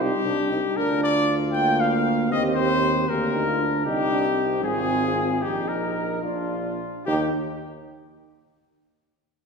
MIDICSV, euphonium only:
0, 0, Header, 1, 2, 480
1, 0, Start_track
1, 0, Key_signature, -3, "major"
1, 0, Tempo, 517688
1, 712, Time_signature, 6, 3, 24, 8
1, 5040, Tempo, 545455
1, 8580, End_track
2, 0, Start_track
2, 0, Title_t, "Euphonium"
2, 0, Program_c, 0, 58
2, 9, Note_on_c, 0, 63, 91
2, 246, Note_on_c, 0, 62, 95
2, 260, Note_off_c, 0, 63, 0
2, 479, Note_off_c, 0, 62, 0
2, 488, Note_on_c, 0, 63, 86
2, 723, Note_on_c, 0, 62, 107
2, 737, Note_off_c, 0, 63, 0
2, 1184, Note_off_c, 0, 62, 0
2, 1437, Note_on_c, 0, 58, 102
2, 2148, Note_on_c, 0, 60, 118
2, 2162, Note_off_c, 0, 58, 0
2, 2865, Note_off_c, 0, 60, 0
2, 2870, Note_on_c, 0, 58, 84
2, 3102, Note_off_c, 0, 58, 0
2, 3108, Note_on_c, 0, 63, 81
2, 3343, Note_on_c, 0, 62, 77
2, 3357, Note_off_c, 0, 63, 0
2, 3576, Note_off_c, 0, 62, 0
2, 3581, Note_on_c, 0, 63, 106
2, 3817, Note_off_c, 0, 63, 0
2, 3821, Note_on_c, 0, 62, 85
2, 3930, Note_off_c, 0, 62, 0
2, 4061, Note_on_c, 0, 60, 98
2, 5018, Note_off_c, 0, 60, 0
2, 5040, Note_on_c, 0, 63, 96
2, 5740, Note_off_c, 0, 63, 0
2, 5753, Note_on_c, 0, 62, 73
2, 6112, Note_off_c, 0, 62, 0
2, 6483, Note_on_c, 0, 63, 100
2, 6683, Note_off_c, 0, 63, 0
2, 8580, End_track
0, 0, End_of_file